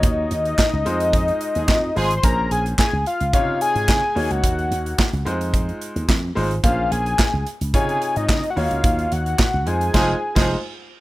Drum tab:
CC |----------------|----------------|----------------|----------------|
HH |x-xx--xxxxxx--ox|x-xx--xxx-xx--ox|xxxx-xxxxxxx--ox|x-xx--xxxxxx-xox|
CP |----x-------x---|----x-------x---|----x-------x---|----x-------x---|
SD |----o-------o---|----o-------o---|----o-------o---|----o-------o---|
BD |o---o---o---o---|o---o---o---o---|o---o---o---o---|o---o---o---o---|

CC |--------x--x----|
HH |xxxx--xx--------|
CP |----x-----------|
SD |----o---o--o----|
BD |o---o---o--o----|